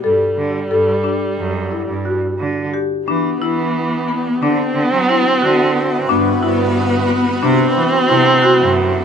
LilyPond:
<<
  \new Staff \with { instrumentName = "Ambient pad" } { \time 9/8 \key g \major \tempo 4. = 60 r1 r8 | r2 <fis' b'>2~ <fis' b'>8~ | <fis' b'>2 r2 r8 | }
  \new Staff \with { instrumentName = "Marimba" } { \time 9/8 \key g \major a'4 a'8 d'4 e'8 fis'4 g'8 | d'8 e'4 b8 d'4 e'8 fis'4 | d'8 e'4 b8 d'4 e'8 fis'4 | }
  \new Staff \with { instrumentName = "Viola" } { \time 9/8 \key g \major g1 r8 | b2 c'2~ c'8 | b2 c'2~ c'8 | }
  \new Staff \with { instrumentName = "Cello" } { \clef bass \time 9/8 \key g \major g,16 r16 d8 g,8 r8 fis,8. g,8 r16 d8 r8 | e8 e4. d16 r16 d16 fis8 r16 d4 | g,8 g,4. c8 e16 r16 c8 r16 fis,8. | }
>>